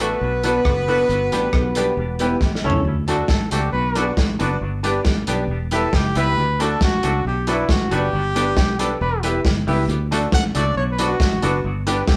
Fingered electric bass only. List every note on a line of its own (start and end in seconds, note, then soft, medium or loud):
0.00 0.14 A1 medium
0.21 0.59 B1 loud
0.65 1.03 F#1 medium
1.09 1.29 G1 loud
1.32 1.50 A1 medium
1.53 1.91 B1 loud
1.97 2.34 E1 loud
2.41 2.61 A1 medium
2.65 2.82 C#2 medium
2.85 3.22 D2 loud
3.29 3.49 A1 medium
3.52 3.70 C#2 medium
3.73 4.10 B1 medium
4.17 4.37 A1 medium
4.41 4.58 F#1 loud
4.61 4.99 G1 loud
5.05 5.25 A1 medium
5.28 5.46 B1 medium
5.48 5.86 E1 loud
5.93 6.13 F#1 medium
6.16 6.34 C#2 loud
6.37 6.74 D2 loud
6.81 7.01 A1 medium
7.04 7.22 C#2 medium
7.25 7.62 B1 medium
7.69 7.89 A1 medium
7.92 8.10 F#1 medium
8.13 8.57 G1 loud
8.57 8.94 B1 loud
9.01 9.38 E1 loud
9.45 9.64 G1 medium
9.68 9.85 C#2 medium
9.88 10.26 D2 loud
10.33 10.52 A1 medium
10.55 10.73 C#2 medium
10.76 11.13 B1 medium
11.20 11.39 A1 medium
11.43 11.61 F#1 loud
11.64 12.01 G1 loud
12.08 12.17 E1 medium